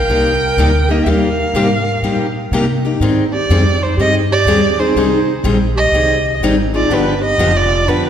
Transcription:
Already playing: clarinet A#4, violin G5
0.08 upright bass C2, steel-string acoustic guitar C3 G3 A#3 D#4 G4
0.57 upright bass D2, steel-string acoustic guitar C3 G3 A#3 D#4 G4
0.89 steel-string acoustic guitar A#3 D#4 G4, clarinet G4, violin D#5
1.01 clarinet G4, violin E5
1.06 upright bass D#2, steel-string acoustic guitar C3 G3 A#3 D#4 G4, clarinet A#4
1.10 violin F5
1.54 upright bass G#2, steel-string acoustic guitar C3 G3 A#3 D#4 G4
2.02 upright bass A#2, steel-string acoustic guitar C3 G3 A#3 D#4 G4
2.51 upright bass C3, steel-string acoustic guitar C3 G3 A#3 D#4 G4
2.85 steel-string acoustic guitar A#3 D#4 G4
3.00 upright bass G#2, steel-string acoustic guitar D#3 G3 C4 D#4 G#4
3.32 clarinet G4, violin D5
3.49 upright bass F2, steel-string acoustic guitar D#3 G3 C4 D#4 G#4
3.80 clarinet D#4, violin C5
3.97 upright bass G2, steel-string acoustic guitar D#3 G3 C4 D#4 G#4, clarinet G4, violin D#5
4.31 clarinet G4, violin D5
4.45 upright bass D#2, steel-string acoustic guitar D#3 G3 C4 D#4 G#4
4.79 steel-string acoustic guitar C4 D#4 G#4, clarinet D#4, violin C5
4.95 upright bass C2, steel-string acoustic guitar D#3 G3 C4 D#4 G#4
5.44 upright bass A#1, steel-string acoustic guitar D#3 G3 C4 D#4 G#4
5.75 clarinet G4, violin D#5
5.91 upright bass C2, steel-string acoustic guitar D#3 G3 C4 D#4 G#4
6.40 upright bass G#1, steel-string acoustic guitar D#3 G3 C4 D#4
6.45 steel-string acoustic guitar G#4
6.73 steel-string acoustic guitar C4 D#4 G#4, clarinet F4, violin D5
6.89 upright bass G1, steel-string acoustic guitar D3 F3 B3 D4 G4, clarinet D4
6.93 violin B4
7.21 clarinet G4, violin D#5
7.38 upright bass F1, steel-string acoustic guitar D3 F3 B3 D4 G4
7.52 clarinet F4
7.57 violin D5
7.86 upright bass F2, steel-string acoustic guitar D3 F3 B3 D4 G4, clarinet D4, violin B4

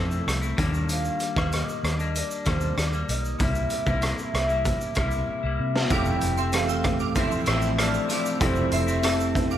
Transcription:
Already playing: fingered electric bass F2, clean electric guitar F3 A3 C4 E4, soft synth lead A4
0.11 shaker
0.27 fingered electric bass C2, cross-stick, closed hi-hat, shaker
0.42 clean electric guitar A3 C4 E4, shaker
0.57 fingered electric bass D#2, clean electric guitar D#3 G3 A#3 D4, kick, closed hi-hat, shaker
0.74 shaker
0.89 soft synth lead F5, closed hi-hat, shaker
1.04 shaker
1.20 closed hi-hat, shaker
1.36 fingered electric bass D#2, clean electric guitar D#3 G3 A#3, kick, cross-stick, shaker
1.52 soft synth lead D#5, cross-stick, closed hi-hat, shaker
1.69 shaker
1.83 fingered electric bass D#2, cross-stick, closed hi-hat, shaker
1.98 clean electric guitar G3 A#3 D4, shaker
2.15 soft synth lead D5, closed hi-hat, shaker
2.31 shaker
2.45 fingered electric bass D#2, clean electric guitar D#3 G3 A#3 D4, soft synth lead C5, kick, cross-stick, closed hi-hat, shaker
2.61 shaker
2.78 fingered electric bass D#2, soft synth lead D5, cross-stick, closed hi-hat, shaker
2.93 clean electric guitar G3 A#3, shaker
3.09 fingered electric bass B1, soft synth lead D#5, closed hi-hat, shaker
3.25 shaker
3.38 fingered electric bass C2, clean electric guitar C3 G3 A#3 E4, soft synth lead E5, kick, closed hi-hat, shaker
3.55 shaker
3.70 closed hi-hat, shaker
3.86 fingered electric bass C2, clean electric guitar C3 G3 A#3 E4, kick, shaker
4.02 cross-stick, closed hi-hat, shaker
4.18 shaker
4.34 fingered electric bass C2, cross-stick, closed hi-hat, shaker
4.48 clean electric guitar G3 A#3 E4, shaker
4.65 kick, closed hi-hat, shaker
4.81 shaker
4.95 fingered electric bass C2, clean electric guitar C3 G3 A#3, kick, cross-stick, closed hi-hat, shaker
4.99 clean electric guitar E4
5.11 shaker
5.29 soft synth lead E5, muted fingered electric bass stroke
5.43 fingered electric bass C2, clean electric guitar G3 A#3 E4
5.59 fingered electric bass C3
5.76 snare
5.90 fingered electric bass F1, analog synth pad C3 A3 C4, clean electric guitar F3 A3 C4 E4, reed electric piano C4 E4 G4 A4, synth bell F5 D6, soft synth lead G5, kick, closed hi-hat, shaker
6.05 shaker
6.21 fingered electric bass F1, closed hi-hat, shaker
6.37 clean electric guitar A3 C4, synth bell E5 C6, shaker
6.52 reed electric piano E3 C4 G4 A4, soft synth lead F5, cross-stick, closed hi-hat, shaker
6.68 synth bell G5 E6, shaker
6.84 kick, cross-stick, closed hi-hat, shaker
6.99 synth bell F5 D6, shaker
7.16 clean electric guitar F3 A3 C4 E4, synth bell E5 C6, soft synth lead E5, kick, closed hi-hat, shaker
7.31 shaker
7.46 fingered electric bass A1, clean electric guitar F3 A3 C4, synth bell G5 E6, cross-stick, closed hi-hat, shaker
7.50 clean electric guitar E4
7.62 shaker
7.77 clean electric guitar F3 A3 C4 E4, soft synth lead D5, synth bell A5 F6, cross-stick, closed hi-hat, shaker
7.94 shaker
8.09 clean electric guitar F3 A3 C4, synth bell F5 D6, closed hi-hat, shaker
8.13 clean electric guitar E4
8.26 shaker
8.40 fingered electric bass F1, clean electric guitar F3 A3 C4 E4, reed electric piano C4 E4 G4 A4, soft synth lead C5, kick, closed hi-hat, shaker
8.55 shaker
8.72 fingered electric bass F1, synth bell E5 C6, soft synth lead E5, closed hi-hat, shaker
8.87 clean electric guitar A3 C4 E4, shaker
9.03 reed electric piano C4 E4 G4 C5, synth bell A5 E6, cross-stick, closed hi-hat, shaker
9.20 shaker
9.35 kick, closed hi-hat, shaker
9.51 synth bell F5 D6, shaker

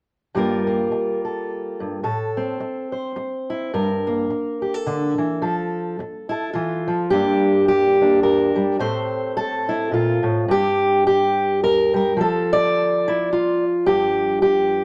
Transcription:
0.35 steel-string acoustic guitar G2 G3 A#3 F4 A#4
0.67 steel-string acoustic guitar A#3
0.92 muted steel-string acoustic guitar stroke
1.25 steel-string acoustic guitar A4
1.80 steel-string acoustic guitar G2
2.03 steel-string acoustic guitar A2 A4
2.37 steel-string acoustic guitar C4
2.60 muted steel-string acoustic guitar stroke
2.92 steel-string acoustic guitar C5
3.16 muted steel-string acoustic guitar stroke
3.50 steel-string acoustic guitar E4
3.73 steel-string acoustic guitar G2 A#4
4.07 steel-string acoustic guitar A#3
4.30 muted steel-string acoustic guitar stroke
4.62 steel-string acoustic guitar G4
4.74 steel-string acoustic guitar A4
4.86 steel-string acoustic guitar D3
5.18 steel-string acoustic guitar E3
5.42 steel-string acoustic guitar F3 A4
5.99 muted steel-string acoustic guitar stroke
6.29 steel-string acoustic guitar E4 A4
6.53 steel-string acoustic guitar E3 F4
6.87 steel-string acoustic guitar F3
7.10 steel-string acoustic guitar G2 G3 A#3 D4 G4
7.68 steel-string acoustic guitar G4
8.01 steel-string acoustic guitar A#3 D4
8.23 steel-string acoustic guitar A#4
8.56 steel-string acoustic guitar G3
8.79 steel-string acoustic guitar A2 A3 C4 C5
9.37 steel-string acoustic guitar A4
9.69 steel-string acoustic guitar E4
9.91 steel-string acoustic guitar A#2 F4
10.23 steel-string acoustic guitar A2
10.48 steel-string acoustic guitar G2 G4
11.07 steel-string acoustic guitar G4
11.64 steel-string acoustic guitar A#4
11.94 steel-string acoustic guitar G3 A#4
12.17 steel-string acoustic guitar F3
12.21 steel-string acoustic guitar A4
12.53 steel-string acoustic guitar D5
13.08 steel-string acoustic guitar E4
13.33 steel-string acoustic guitar F4
13.86 steel-string acoustic guitar G2 G4
14.42 steel-string acoustic guitar G4

